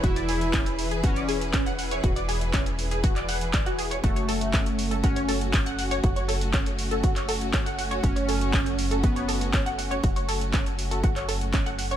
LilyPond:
<<
  \new Staff \with { instrumentName = "Synth pluck" } { \time 4/4 \key fis \minor \tempo 4 = 120 <fis' fis''>16 <d'' d'''>16 <gis' gis''>16 r16 <cis' cis''>16 r8 <gis' gis''>16 <fis' fis''>16 <d'' d'''>16 <gis' gis''>16 r16 <cis' cis''>16 <fis'' fis'''>16 <fis'' fis'''>16 <cis'' cis'''>16 | <fis' fis''>16 <d'' d'''>16 <gis' gis''>16 r16 <cis' cis''>16 r8 <gis' gis''>16 <fis' fis''>16 <d'' d'''>16 <fis'' fis'''>16 r16 <d'' d'''>16 <fis' fis''>16 <gis' gis''>16 <cis'' cis'''>16 | <fis' fis''>16 <cis'' cis'''>16 <a' a''>16 r16 <cis' cis''>16 r8 <a' a''>16 <fis' fis''>16 <cis'' cis'''>16 <a' a''>16 r16 <cis' cis''>16 <fis'' fis'''>16 <fis'' fis'''>16 <cis'' cis'''>16 | <fis' fis''>16 <cis'' cis'''>16 <a' a''>16 r16 <cis' cis''>16 r8 <a' a''>16 <fis' fis''>16 <cis'' cis'''>16 <a' a''>16 r16 <cis' cis''>16 <fis'' fis'''>16 <fis'' fis'''>16 <cis'' cis'''>16 |
<fis' fis''>16 <cis'' cis'''>16 <a' a''>16 r16 <cis' cis''>16 r8 <a' a''>16 <fis' fis''>16 <cis'' cis'''>16 <a' a''>16 r16 <cis' cis''>16 <fis'' fis'''>16 <fis'' fis'''>16 <cis'' cis'''>16 | <fis' fis''>16 <cis'' cis'''>16 <a' a''>16 r16 <cis' cis''>16 r8 <a' a''>16 <fis' fis''>16 <cis'' cis'''>16 <a' a''>16 r16 <cis' cis''>16 <fis'' fis'''>16 <fis'' fis'''>16 <cis'' cis'''>16 | }
  \new Staff \with { instrumentName = "String section" } { \time 4/4 \key fis \minor <e e' gis' b'>1~ | <e e' gis' b'>1 | <a cis' fis'>1~ | <a cis' fis'>1~ |
<a cis' fis'>1~ | <a cis' fis'>1 | }
  \new Staff \with { instrumentName = "Analog polysynth" } { \time 4/4 \key fis \minor e'2 cis'4 r4 | r1 | a2 cis'4 r4 | r1 |
cis'2 b4 r4 | r1 | }
  \new Staff \with { instrumentName = "Analog synth bass" } { \clef bass \time 4/4 \key fis \minor e,,1 | e,,1 | fis,,1 | fis,,1 |
fis,,1 | fis,,1 | }
  \new DrumStaff \with { instrumentName = "Drums" } \drummode { \time 4/4 <hh bd>16 hh16 hho16 hh16 <hc hh bd>16 hh16 hho16 hh16 <hh bd>16 hh16 hho16 hh16 <hc hh bd>16 hh16 hho16 hh16 | <hh bd>16 hh16 hho16 hh16 <hc hh bd>16 hh16 hho16 hh16 <hh bd>16 <hc hh>16 hho16 hh16 <hc hh bd>16 hh16 hho16 hh16 | <hh bd>16 hh16 hho16 hh16 <hc hh bd>16 hh16 hho16 hh16 <hh bd>16 hh16 hho16 hh16 <hc hh bd>16 hh16 hho16 hh16 | <hh bd>16 hh16 hho16 hh16 <hc hh bd>16 hh16 hho16 hh16 <hh bd>16 <hc hh>16 hho16 hh16 <hc hh bd>16 hh16 hho16 hh16 |
<hh bd>16 hh16 hho16 hh16 <hc hh bd>16 hh16 hho16 hh16 <hh bd>16 hh16 hho16 hh16 <hc hh bd>16 hh16 hho16 hh16 | <hh bd>16 hh16 hho16 hh16 <hc hh bd>16 hh16 hho16 hh16 <hh bd>16 <hc hh>16 hho16 hh16 <hc hh bd>16 hh16 hho16 hh16 | }
>>